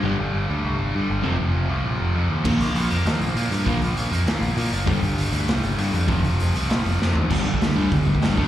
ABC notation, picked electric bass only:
X:1
M:4/4
L:1/8
Q:1/4=198
K:Fmix
V:1 name="Picked electric bass" clef=bass
G,,, G,,, G,,, D,, C,, G,,, G,, G,,, | F,,, F,,, F,,, C,, B,,, F,,, F,, E,, | B,,, B,,, B,,, F,, E,, B,,, B,, G,, | B,,, B,,, B,,, F,, E,, B,,, B,, ^F,,, |
G,,, G,,, G,,, D,, C,, G,,, G,, F,, | F,,, F,,, F,,, C,, B,,, F,,, F,, E,, | [K:Cmix] G,,, G,,, D,, D,, G,,, D,, G,,, D,, |]